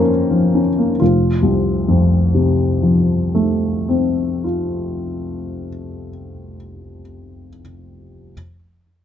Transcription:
grand piano
Already playing: F2 F3 A#3 C#4 A#4 C5 C#5
0.31 F3
0.55 C#4
0.79 A#3
1.00 F1 F4
1.43 C2
1.88 F2
2.34 C3
2.83 F3
3.35 A3
3.88 C4
4.44 F4

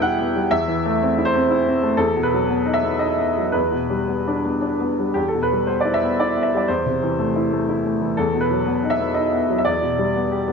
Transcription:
upright piano
Already playing: E2 B2 G3 B3 E4 E5 G5
0.02 E4 F#5
0.19 B3
0.36 G3
0.51 E2 E5
0.68 E3
0.85 A3
1.02 C4
1.18 E4
1.25 C5
1.35 C4
1.50 E4
1.67 C4
1.83 A3
1.97 E2 A4
2.16 B2
2.23 B4
2.33 F#3
2.49 B3
2.66 D#4
2.73 E5
2.83 B3
2.99 D#4 D#5
3.17 B3
3.36 F#3
3.52 E2 B4
3.71 B2
3.90 G3
4.08 B3
4.27 D4
4.45 B3
4.61 D4
4.80 B3
4.99 G3
5.14 E2 G4
5.28 A4
5.34 B2
5.43 B4
5.52 G3
5.67 B3 C5
5.81 D5
5.85 E4
5.94 E5
6.03 B3
6.20 E4 D5
6.36 B3
6.43 E5
6.54 G3 D5
6.68 E2 C5
6.86 C3
7.02 E3
7.19 A3
7.36 E4
7.52 A3
7.69 E4
7.85 A3
8.01 E3
8.17 E2 A4
8.34 B2
8.41 B4
8.50 F#3
8.67 B3
8.83 D#4
8.90 E5
8.98 B3
9.14 D#4 D#5
9.32 B3
9.49 F#3
9.58 E5
9.65 E2 D5
9.81 B2
9.98 G3
10.15 B3
10.32 G4
10.48 B3

